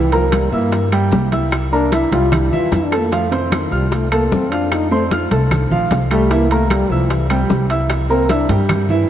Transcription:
Already playing: upright bass C2, trombone E3
0.12 trombone F3, grand piano A#3 A#4 A#5, high bongo, high conga, high timbale, maracas
0.32 trombone G3, high bongo, high conga, high timbale, claves, maracas
0.52 upright bass G2, trombone A#3, grand piano E4 E5 E6, high bongo, high conga, maracas
0.72 high bongo, high conga, high timbale, maracas
0.92 grand piano G3 G4 G5, high conga, high timbale, claves, maracas
1.11 upright bass C2, high bongo, low bongo, high conga, low timbale, maracas
1.32 grand piano E4 E5 E6, high bongo, high conga, high timbale, maracas
1.52 high bongo, high conga, high timbale, claves, maracas
1.72 grand piano A#3 A#4 A#5, trombone D4, high bongo, high conga, maracas
1.92 trombone E4, grand piano E4 E5 E6, high bongo, high conga, high timbale, maracas
2.12 upright bass C2, grand piano G3 G4 G5, trombone F4, high conga, high timbale, maracas
2.32 trombone E4, high bongo, high conga, low conga, high timbale, claves, maracas
2.52 upright bass E2, grand piano E3 E4 E5, trombone F4, high bongo, high conga, low conga, maracas
2.71 upright bass F2, trombone E4, high bongo, low bongo, high conga, high timbale, maracas
2.85 trombone D4
2.92 grand piano A3 A4 A5, high bongo, high timbale, claves, maracas
2.99 trombone A#3
3.12 grand piano F3 F4 F5, trombone A3, high bongo, high conga, high timbale, maracas
3.32 trombone C3, grand piano C4 C5 C6, high bongo, high conga, high timbale, maracas
3.51 trombone D#3, high bongo, high conga, high timbale, claves, maracas
3.71 upright bass C2, trombone G3, grand piano F4 F5 F6, high bongo, high conga, maracas
3.92 trombone A3, high bongo, high conga, high timbale, maracas
4.12 grand piano A3 A4 A5, trombone A#3, high conga, high timbale, claves, maracas
4.31 upright bass F2, trombone C4, high bongo, low bongo, high conga, maracas
4.51 trombone D4, grand piano F4 F5 F6, high bongo, high timbale, maracas
4.72 trombone D#4, high bongo, high conga, high timbale, claves, maracas
4.91 trombone A3, grand piano C4 C5 C6, high bongo, high conga, maracas
5.11 grand piano F4 F5 F6, high bongo, high conga, high timbale, maracas
5.31 upright bass C2, grand piano A3 A4 A5, high conga, high timbale, maracas
5.51 high bongo, high conga, low conga, high timbale, claves, maracas
5.71 upright bass A#1, grand piano F3 F4 F5, high bongo, high conga, low conga, maracas
5.91 upright bass C2, high bongo, low bongo, high conga, high timbale, low timbale, maracas
6.11 grand piano G3 G4 G5, trombone A3, high bongo, high timbale, claves, maracas
6.31 grand piano E3 E4 E5, trombone A#3, high bongo, high conga, high timbale, maracas
6.51 trombone A3, grand piano A#3 A#4 A#5, high bongo, high conga, high timbale, maracas
6.70 trombone G3, high bongo, high conga, high timbale, claves, maracas
6.90 upright bass C2, trombone F3, grand piano E4 E5 E6, high bongo, high conga, maracas
7.10 trombone E3, high bongo, high conga, high timbale, maracas
7.30 trombone C3, grand piano G3 G4 G5, high conga, high timbale, claves, maracas
7.49 upright bass C2, high bongo, low bongo, high conga, maracas
7.70 grand piano E4 E5 E6, high bongo, high timbale, maracas
7.89 high bongo, high conga, high timbale, claves, maracas
8.09 grand piano A#3 A#4 A#5, trombone C4, high bongo, high conga, maracas
8.29 trombone D4, grand piano E4 E5 E6, high bongo, high conga, high timbale, maracas
8.49 upright bass G2, grand piano G3 G4 G5, high conga, high timbale, maracas
8.69 high bongo, high conga, low conga, high timbale, claves, maracas
8.89 grand piano E3 E4 E5, high bongo, high conga, low conga, maracas

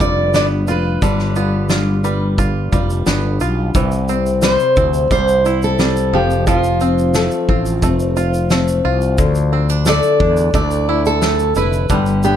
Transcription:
Already playing: five-string banjo D3 B3 F4, nylon-string guitar G3 D4 B4
0.00 fretless electric bass F1, five-string banjo G3, nylon-string guitar F4, steel-string acoustic guitar D5, kick, shaker
0.34 fretless electric bass G1, five-string banjo B3, nylon-string guitar D4, steel-string acoustic guitar D5, snare, shaker
0.67 fretless electric bass F1, five-string banjo F4, nylon-string guitar F4, steel-string acoustic guitar B4, shaker
1.02 fretless electric bass G1, five-string banjo D3, nylon-string guitar G3, steel-string acoustic guitar B4, kick, shaker
1.19 snare
1.36 five-string banjo B3, nylon-string guitar F4, shaker
1.69 nylon-string guitar D4, five-string banjo F4, snare, shaker
2.04 five-string banjo G3, nylon-string guitar B4, shaker
2.38 nylon-string guitar D4, five-string banjo F4, kick, shaker
2.72 fretless electric bass F1, five-string banjo G3, nylon-string guitar F4, kick, shaker
2.90 shaker
3.06 fretless electric bass G1, five-string banjo B3, nylon-string guitar D4, snare, shaker
3.40 fretless electric bass B1, nylon-string guitar F4, five-string banjo F4, shaker
3.75 fretless electric bass C2, nylon-string guitar C3, five-string banjo E3, kick, shaker
3.91 shaker
4.08 nylon-string guitar C4, five-string banjo C4, shaker
4.26 shaker
4.42 five-string banjo G3, nylon-string guitar C5, steel-string acoustic guitar C5, snare, shaker
4.59 shaker
4.76 fretless electric bass D2, five-string banjo C4, nylon-string guitar E4, kick, shaker
4.94 shaker
5.11 fretless electric bass C2, five-string banjo G3, nylon-string guitar C4, steel-string acoustic guitar C5, kick, shaker
5.28 shaker
5.45 nylon-string guitar E4, five-string banjo E4, shaker
5.62 steel-string acoustic guitar A4, shaker
5.79 five-string banjo G3, nylon-string guitar C4, snare, shaker
5.97 shaker
6.13 fretless electric bass F1, nylon-string guitar F3, five-string banjo F3, steel-string acoustic guitar G4
6.30 shaker
6.47 five-string banjo F3, nylon-string guitar F3, steel-string acoustic guitar F4, kick, shaker
6.64 shaker
6.80 nylon-string guitar C4, five-string banjo C4, shaker
6.98 shaker
7.14 five-string banjo A3, nylon-string guitar A4, snare, shaker
7.31 shaker
7.49 fretless electric bass A1, five-string banjo C4, nylon-string guitar F4, kick
7.66 shaker
7.82 fretless electric bass F1, five-string banjo A3, nylon-string guitar C4, kick, shaker
8.00 shaker
8.17 five-string banjo F4, nylon-string guitar F4, shaker
8.34 shaker
8.50 five-string banjo A3, nylon-string guitar C4, snare, shaker
8.68 shaker
8.85 fretless electric bass C2, five-string banjo F4, nylon-string guitar F4
9.01 shaker
9.18 fretless electric bass D2, nylon-string guitar D3, kick, shaker
9.35 shaker
9.53 five-string banjo C4, nylon-string guitar D4
9.69 five-string banjo D4, shaker
9.85 five-string banjo A3, nylon-string guitar A4, steel-string acoustic guitar D5, snare, shaker
10.03 shaker
10.20 fretless electric bass E2, five-string banjo D4, nylon-string guitar E4, kick
10.37 shaker
10.54 fretless electric bass D2, five-string banjo A3, nylon-string guitar D4, steel-string acoustic guitar D5, kick, shaker
10.71 shaker
10.89 five-string banjo E4, nylon-string guitar E4
11.05 steel-string acoustic guitar A4, shaker
11.22 five-string banjo A3, nylon-string guitar D4, snare, shaker
11.39 shaker
11.55 fretless electric bass F1, five-string banjo E4, nylon-string guitar E4, steel-string acoustic guitar B4, shaker
11.73 shaker
11.89 fretless electric bass G1, five-string banjo D3, nylon-string guitar G3, kick, shaker
12.06 shaker
12.23 five-string banjo B3, nylon-string guitar D4, steel-string acoustic guitar G4, shaker

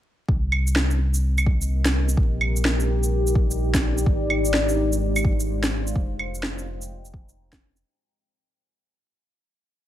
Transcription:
0.28 sub bass C2, ambient pad C4, kick
0.52 claves
0.62 ambient pad A#4
0.67 ambient pad D#5, shaker
0.72 ambient pad G4, snare
0.91 shaker
1.14 shaker
1.38 claves, shaker
1.46 kick
1.62 shaker
1.85 snare, shaker
2.09 shaker
2.17 sub bass A#1, ambient pad D#4, kick
2.41 claves
2.56 shaker
2.65 snare
2.80 shaker
3.04 ambient pad D5, shaker
3.27 shaker
3.35 kick
3.51 shaker
3.74 kick, snare, shaker
3.98 shaker
4.06 sub bass G#1, ambient pad G#3, kick
4.30 claves
4.45 shaker
4.54 snare
4.69 shaker
4.93 ambient pad C5 F5, shaker
5.16 claves, shaker
5.25 kick
5.40 shaker
5.63 snare, shaker
5.87 shaker
5.96 sub bass F1, ambient pad F4, kick
6.19 ambient pad D#5, claves
6.35 ambient pad G5, shaker
6.43 snare
6.58 shaker
6.80 ambient pad G#5 A#5, shaker
7.05 shaker
7.14 kick
7.29 shaker
7.52 kick, snare, shaker
7.76 shaker

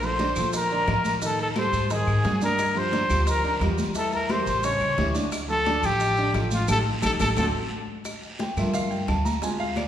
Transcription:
Already playing: upright bass A#1
0.02 grand piano F3 F4 A4, trumpet C5, flute C6, high bongo, high conga, maracas
0.19 grand piano D3 D4 D5, high bongo, high conga, short guiro, maracas
0.36 upright bass A#2, grand piano F3 F4 A4, high conga, short guiro, claves, maracas
0.53 trumpet A#4, flute A#5, high bongo, high conga, long guiro, maracas
0.70 grand piano D3 D4 D5, high bongo, high conga, maracas
0.87 upright bass A2, grand piano F3 F4 A#4, high bongo, low bongo, high conga, short guiro, claves, maracas
1.04 high bongo, high conga, short guiro, maracas
1.22 grand piano D#3 D#4 D#5, trumpet A4, flute A5, high bongo, high conga, long guiro, maracas
1.39 trumpet A4, flute A5, high bongo, high conga, maracas
1.56 grand piano G3 G4 A4, trumpet C5, flute C6, high bongo, high conga, short guiro, claves, maracas
1.73 upright bass G#2, high conga, short guiro, maracas
1.90 grand piano D#3 D#4 D#5, trumpet G#4, flute G#5, high bongo, high conga, long guiro, maracas
2.07 upright bass G#2, high bongo, high conga, claves, maracas
2.24 upright bass G2, grand piano F#3 F#4 G#4, high bongo, low bongo, high conga, short guiro, maracas
2.41 grand piano D3 D4 D5, trumpet A#4, flute A#5, high conga, short guiro, maracas
2.59 high bongo, high conga, long guiro, claves, maracas
2.75 grand piano F3 F4 G4, trumpet C5, flute C6, high bongo, high conga, maracas
2.92 grand piano D3 D4 D5, high bongo, high conga, short guiro, maracas
3.09 upright bass D2, grand piano F3 F4 G4, high conga, short guiro, claves, maracas
3.27 trumpet A#4, flute A#5, high bongo, high conga, long guiro, maracas
3.44 grand piano D3 D4 D5, high bongo, high conga, maracas
3.61 upright bass E2, grand piano G3 F4 G4, high bongo, low bongo, high conga, short guiro, claves, maracas
3.78 high bongo, high conga, short guiro, maracas
3.95 grand piano E3 E4 E5, trumpet A4, flute A5, high bongo, high conga, long guiro, maracas
4.12 trumpet A#4, flute A#5, high bongo, high conga, maracas
4.29 grand piano G3 G4 A#4, trumpet C5, flute C6, high bongo, high conga, short guiro, claves, maracas
4.46 upright bass A1, high conga, short guiro, maracas
4.63 grand piano C#3 C#4 C#5, trumpet C#5, flute C#6, high bongo, high conga, long guiro, maracas
4.80 upright bass C#2, high bongo, high conga, claves, maracas
4.97 upright bass D2, grand piano E3 E4 G4, high bongo, low bongo, high conga, short guiro, maracas
5.14 grand piano D3 D4 D5, high conga, short guiro, maracas
5.32 high bongo, high conga, long guiro, claves, maracas
5.49 grand piano F3 F4 A4, trumpet A4, flute A5, high bongo, high conga, maracas
5.66 grand piano D3 D4 D5, high bongo, high conga, short guiro, maracas
5.83 upright bass A1, grand piano F3 F4 A4, trumpet G4, flute G5, high conga, short guiro, claves, maracas
6.00 high bongo, high conga, long guiro, maracas
6.17 grand piano D3 D4 D5, high bongo, high conga, maracas
6.34 upright bass A1, grand piano F3 F4 A4, high bongo, low bongo, high conga, short guiro, claves, maracas
6.51 trumpet F4, flute F5, high bongo, high conga, short guiro, maracas
6.68 upright bass A1, grand piano D#4 G4 A4, trumpet A4, flute A5, low bongo, high conga, long guiro, claves, maracas
7.02 upright bass A1, grand piano D#4 G4 A4, trumpet A4, flute A5, low bongo, high conga, long guiro, claves, maracas
7.20 upright bass A1, grand piano D#4 G4 A4, trumpet A4, flute A5, low bongo, high conga, long guiro, claves, maracas
7.37 upright bass D2, grand piano C4 D4 F#4, trumpet A4, flute A5, low bongo, high conga, long guiro, claves, maracas
8.05 high bongo, high conga, long guiro, claves, maracas
8.22 high bongo, high conga, maracas
8.39 grand piano G5, high bongo, high conga, short guiro, maracas
8.56 upright bass G2, grand piano A3 A#3 F4 E5, high conga, low conga, short guiro, claves, maracas
8.74 grand piano F5, high bongo, high conga, low conga, long guiro, maracas
8.91 grand piano G5, high bongo, high conga, maracas
9.08 upright bass D2, grand piano A5, high bongo, low bongo, high conga, short guiro, claves, maracas
9.25 grand piano A#5, high bongo, high conga, short guiro, maracas
9.42 grand piano G#3 C4 F4 G#5, high bongo, high conga, long guiro, maracas
9.60 grand piano F5, high bongo, high conga, maracas
9.76 grand piano D5, high bongo, high conga, short guiro, claves, maracas

